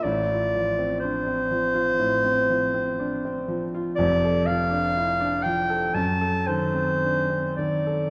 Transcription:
0.03 grand piano A1 A2, clarinet D5
0.31 grand piano F4
0.55 grand piano F3
0.79 grand piano C4
1.00 grand piano D4, clarinet C5
1.27 grand piano C4
1.51 grand piano F3
1.74 grand piano F4
1.99 grand piano A2
2.24 grand piano C4
2.50 grand piano F3
2.74 grand piano C4
3.00 grand piano D4
3.25 grand piano C4
3.48 grand piano F3
3.75 grand piano F4
3.95 grand piano F1, clarinet D5
4.00 grand piano F2
4.24 grand piano A4
4.46 grand piano F3, clarinet F5
4.71 grand piano D4
4.97 grand piano E4
5.20 grand piano D4
5.42 grand piano F3, clarinet G5
5.70 grand piano A4
5.94 grand piano F#2, clarinet A5
6.21 grand piano A4
6.47 grand piano D#3, clarinet C5
6.74 grand piano C4
7.04 grand piano D4
7.30 grand piano C4
7.56 grand piano D#3, clarinet D5
7.87 grand piano A4

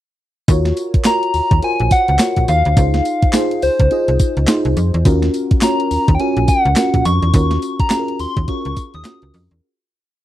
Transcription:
0.48 fm bass D#2, fm electric piano F4 F#4 A#4 C#5, kick, closed hi-hat, tambourine
0.65 snare, closed hi-hat
0.77 closed hi-hat, tambourine
0.94 fm bass D#2, kick, closed hi-hat
1.04 fm electric piano F4 F#4 A#4 C#5, soft synth lead A#5, snare, clap, closed hi-hat, tambourine
1.23 closed hi-hat
1.34 fm bass D#2, open hi-hat, tambourine
1.51 fm bass D#2, kick, closed hi-hat
1.62 fm electric piano F4 F#4 A#4 C5, soft synth lead G#5, closed hi-hat
1.80 fm bass A#1, closed hi-hat
1.91 soft synth lead F#5, kick, closed hi-hat, tambourine
2.08 fm bass C#2, closed hi-hat
2.19 fm electric piano F4 F#4 A#4 C#5, snare, clap, closed hi-hat, tambourine
2.36 fm bass A#1, kick, closed hi-hat
2.48 fm bass D#2, soft synth lead F5, closed hi-hat, tambourine
2.65 fm bass D2, closed hi-hat
2.77 fm bass C#2, fm electric piano D#4 F4 G#4 C5, kick, closed hi-hat, tambourine
2.94 snare, closed hi-hat
3.05 closed hi-hat, tambourine
3.22 fm bass C#2, kick, closed hi-hat
3.33 fm electric piano D#4 F4 G#4 C5, snare, clap, closed hi-hat, tambourine
3.51 closed hi-hat
3.62 fm bass C#2, soft synth lead C5, open hi-hat, tambourine
3.80 fm bass C#2, kick, closed hi-hat
3.91 fm electric piano D#4 F4 G#4 D#5, closed hi-hat
4.08 fm bass C2, closed hi-hat
4.19 kick, closed hi-hat, tambourine
4.37 fm bass C#2, closed hi-hat
4.47 fm electric piano D#4 F4 G#4 C5, snare, clap, closed hi-hat, tambourine
4.65 fm bass C2, closed hi-hat
4.77 fm bass F2, closed hi-hat, tambourine
4.94 fm bass E2, closed hi-hat
5.05 fm bass D#2, fm electric piano C#4 F4 F#4 A#4, kick, closed hi-hat, tambourine
5.22 snare, closed hi-hat
5.34 closed hi-hat, tambourine
5.51 fm bass D#2, kick, closed hi-hat
5.61 fm electric piano C#4 F4 F#4 C#5, soft synth lead A#5, snare, clap, closed hi-hat, tambourine
5.80 closed hi-hat
5.91 fm bass D#2, open hi-hat, tambourine
6.08 fm bass D#2, kick, closed hi-hat
6.15 soft synth lead G5
6.20 fm electric piano C#4 F4 F#4 A#4, soft synth lead G#5, closed hi-hat
6.37 fm bass A#1, closed hi-hat
6.48 soft synth lead F#5, kick, closed hi-hat, tambourine
6.65 fm bass C#2, closed hi-hat
6.76 fm electric piano C#4 F4 F#4 A#4, snare, clap, closed hi-hat, tambourine
6.94 fm bass A#1, kick, closed hi-hat
7.05 fm bass F2, soft synth lead C#6, closed hi-hat, tambourine
7.22 fm bass E2, closed hi-hat
7.34 fm bass D#2, fm electric piano C#4 F4 F#4 A#4, kick, closed hi-hat, tambourine
7.51 snare, closed hi-hat
7.62 closed hi-hat, tambourine
7.79 fm bass D#2, soft synth lead A#5, kick, closed hi-hat
7.90 fm electric piano C#4 F4 F#4 G#4, snare, clap, closed hi-hat, tambourine
7.99 fm electric piano A#4
8.08 closed hi-hat
8.19 fm bass D#2, soft synth lead C6, open hi-hat, tambourine
8.37 fm bass D#2, kick, closed hi-hat
8.48 fm electric piano C#4 F4 F#4 A#4, soft synth lead C#6, kick, closed hi-hat
8.65 fm bass C#2, closed hi-hat
8.76 kick, closed hi-hat, tambourine
8.94 fm bass D#2, soft synth lead D#6, closed hi-hat
9.04 fm electric piano C#4 F4 F#4 A#4, snare, clap, closed hi-hat, tambourine
9.22 fm bass C#2, closed hi-hat
9.34 fm bass F2, open hi-hat, tambourine
9.51 fm bass E2, closed hi-hat

